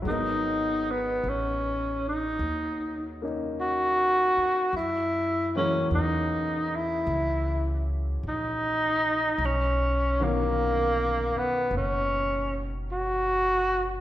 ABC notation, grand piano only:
X:1
M:4/4
L:1/8
Q:"Swing" 1/4=52
K:B
V:1 name="Grand piano"
[F,G,B,DA]4- [F,G,B,DA] [A,CD]3 | z [E,F,G,A,C]6- [E,F,G,A,C] | z [B,,D,F,CA]6- [B,,D,F,CA] |]